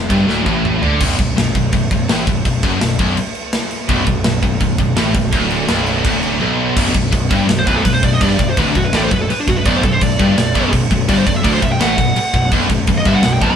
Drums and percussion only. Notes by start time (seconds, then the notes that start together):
0.10 kick, ride
0.29 snare
0.46 kick
0.65 mid tom
0.83 floor tom
1.01 kick, crash
1.19 kick, crash
1.38 snare, crash
1.55 kick, crash
1.72 kick, crash
1.91 kick, crash
2.09 snare, crash
2.27 kick, crash
2.45 kick, crash
2.63 kick, crash
2.81 snare, crash
2.99 kick, crash
3.17 crash
3.35 crash
3.53 snare, crash
3.71 crash
3.89 kick, crash
4.06 kick, crash
4.24 snare, crash
4.43 kick, crash
4.60 kick, crash
4.78 kick, crash
4.96 snare, crash
5.14 kick, crash
5.32 kick, crash
5.50 crash
5.68 snare, crash
5.86 crash
6.05 kick, crash
6.23 crash
6.77 kick, crash
6.95 kick, crash
7.12 kick, crash
7.31 kick, crash
7.49 snare, crash
7.67 kick, crash
7.85 kick, crash
8.03 kick, crash
8.21 kick, crash
8.39 kick, crash
8.57 kick, crash
8.75 kick, crash
8.93 snare, crash
9.11 kick, crash
9.30 crash
9.48 kick, crash
9.66 kick, crash
9.83 kick, crash
10.01 kick, crash
10.19 kick, crash
10.38 snare, crash
10.55 kick, crash
10.73 kick, crash
10.91 kick, crash
11.09 kick, crash
11.27 kick, crash
11.44 kick, crash
11.62 kick, crash
11.80 snare, crash
11.98 kick, crash
12.16 crash
12.34 kick
12.52 kick, crash
12.70 kick, crash
12.87 kick, crash
13.05 kick, crash
13.23 snare, crash
13.41 kick, crash